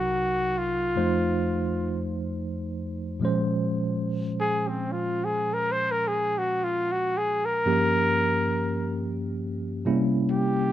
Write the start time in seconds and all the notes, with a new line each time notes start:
Already playing: C2 C3 F#3 D#4 F#4 A#4
0.58 F4
0.96 F2 F3 A3 D#4 C5
3.20 A#2 F3 G#3 C#4
3.25 C5
4.41 G#4
4.68 C4
4.92 F4
5.24 G#4
5.54 A#4
5.72 C5
5.92 A#4
6.08 G#4
6.38 F#4
6.64 F4
6.92 F#4
7.18 G#4
7.45 A#4
7.66 G2 F3 A#3 C#4 G4
9.85 C3 G3 A#3 C#4 E4
10.31 G4